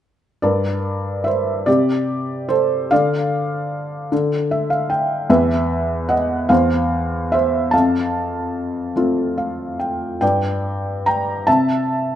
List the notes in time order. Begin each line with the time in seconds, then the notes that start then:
0.42 G2 A#4 D5
1.24 C5 E5
1.66 C3 G4 D5
2.49 A4 C5
2.91 D3 D5 F5
4.12 D3
4.51 E5
4.70 F5
4.90 G5
5.29 E2 B4 E5
6.09 D#5 F#5
6.49 E2 C5 F5
7.32 C5 E5
7.71 F2 F5 A5
8.96 A3 C4 F4
9.38 F5
9.80 G5
10.21 G2 D5 G5
11.06 G5 A#5
11.47 C3 E5 A5